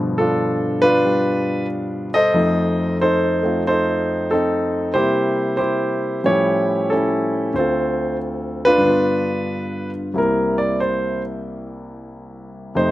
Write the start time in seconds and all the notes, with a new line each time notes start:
Already playing: G2 B2 D3 F3
0.18 D4 F4 A4
0.82 D4 F4 B4
1.05 G3
2.14 A4 C5 D#5
2.33 F2 F3 A3 D#4
3.01 D#4 A4 C5
3.43 A3 C4 F4
3.67 D#4 A4 C5
4.31 C4 D#4 A4
4.94 C3 G3 A#3 E4 G4 C5
5.57 E4 G4 C5
6.24 A2 F3 G3 C#4 E4 G4 C#5
6.90 C#4 E4 A4
7.54 D2 D3 C4 C5
7.59 F4 A4
8.65 D4 F4 B4
8.78 G2
8.82 D3 B3
8.90 F4
10.14 C2 C3 A#3 E4
10.18 A#4
10.58 D5
10.80 C5
12.75 F2 C3 A3 D#4 C5